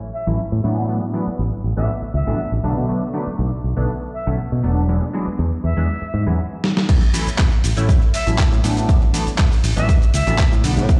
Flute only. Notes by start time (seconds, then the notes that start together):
0.14 E5
1.77 E5
2.14 E5
4.14 E5
5.64 E5
8.14 E5
9.77 E5
10.14 E5